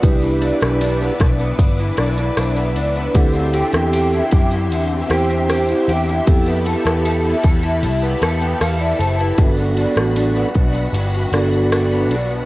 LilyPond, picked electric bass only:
\new Staff \with { instrumentName = "Picked electric bass" } { \clef bass \time 4/4 \key g \major \tempo 4 = 77 c,8. b,,8. b,,8 g,,8 b,,8 b,,8 cis,8 | d,8. e,8. fis,8 e,8 e,4 e,8 | f,8. e,8. e,8 c,8 e,8 e,8 fis,,8 | g,,8. a,,8. b,,8 g,,8 g,,4 b,,8 | }